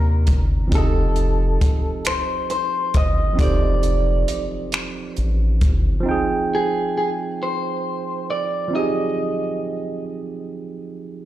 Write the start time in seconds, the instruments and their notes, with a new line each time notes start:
Already playing: analog synth bass D#2, tine electric piano C3 C4 D4 D#4 A#4 D5, clean electric guitar A#4
0.27 analog synth bass G1, kick, closed hi-hat
0.67 tine electric piano F3 C4 D#4
0.72 analog synth bass F1, tine electric piano G4, clean electric guitar A4, kick, closed hi-hat
0.76 tine electric piano G#4 D#5
0.82 tine electric piano A4
1.16 closed hi-hat
1.61 analog synth bass G1, kick, closed hi-hat
2.05 clean electric guitar C5, finger snap, closed hi-hat
2.50 clean electric guitar C5, closed hi-hat
2.94 analog synth bass G1, clean electric guitar D#5, kick, closed hi-hat
3.33 tine electric piano F3 C4
3.37 analog synth bass F1, tine electric piano D#4 G4, clean electric guitar D5, kick, closed hi-hat
3.41 tine electric piano A4 C5
3.83 closed hi-hat
4.28 analog synth bass A1, closed hi-hat
4.72 finger snap, closed hi-hat
5.17 analog synth bass A1, closed hi-hat
5.61 analog synth bass G1, kick, closed hi-hat
6.00 tine electric piano F3 C4
6.06 tine electric piano D#4 G5
6.11 tine electric piano G#4
6.55 clean electric guitar G#4
6.98 clean electric guitar G#4
7.43 clean electric guitar C5
8.30 clean electric guitar D5
8.68 tine electric piano F3 C4
8.73 tine electric piano D#4 G4, clean electric guitar D#5
8.79 tine electric piano G#4